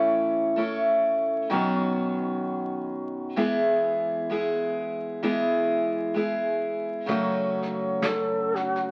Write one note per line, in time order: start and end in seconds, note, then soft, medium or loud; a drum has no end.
0.00 1.47 A1 medium
0.00 0.58 A2 medium
0.00 0.58 E3 medium
0.00 0.55 A3 medium
0.00 0.56 C#4 medium
0.00 0.56 E4 medium
0.00 0.58 A4 medium
0.56 1.50 A3 medium
0.56 1.51 C#4 medium
0.56 1.51 E4 soft
0.56 1.51 A4 soft
1.50 3.33 B1 medium
1.50 3.36 B2 medium
1.50 3.36 D#3 medium
1.50 3.36 F#3 medium
1.50 3.36 B3 medium
1.50 3.37 C#4 medium
1.50 3.38 F#4 medium
3.36 7.05 E2 medium
3.36 4.30 E3 medium
3.36 4.28 G#3 medium
3.36 4.29 B3 medium
3.36 4.30 E4 medium
3.36 4.31 G#4 medium
4.30 5.22 G#3 soft
4.30 5.22 B3 soft
4.30 5.22 E4 soft
4.30 5.23 G#4 soft
5.23 6.16 E3 medium
5.23 6.13 G#3 medium
5.23 6.14 B3 medium
5.23 6.15 E4 medium
5.23 6.15 G#4 medium
6.14 7.08 G#3 soft
6.14 7.08 B3 soft
6.14 7.09 E4 soft
6.14 7.09 G#4 soft
7.06 8.91 F#2 medium
7.06 8.91 C#3 medium
7.06 8.91 F#3 medium
7.06 8.91 A3 medium
7.06 8.91 C#4 medium
7.06 8.91 F#4 medium
7.06 kick medium
7.06 snare soft
7.62 snare soft
8.01 8.56 A4 medium
8.01 snare medium
8.55 8.91 F#4 medium
8.55 snare soft
8.76 snare soft